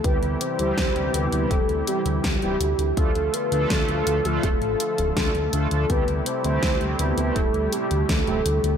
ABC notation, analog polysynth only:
X:1
M:4/4
L:1/16
Q:1/4=82
K:Ddor
V:1 name="Analog polysynth"
[G,CEG] z2 [G,CEG]4 [G,CEG] z2 [G,CEG] z2 [G,CEG] z2 | [A,DFA] z2 [A,DFA]4 [A,DFA] z4 [A,DFA] z [A,DFA] [A,DFA] | [A,CEG] z2 [A,CEG]4 [A,CEG] z2 [A,CEG] z2 [A,CEG] z2 |]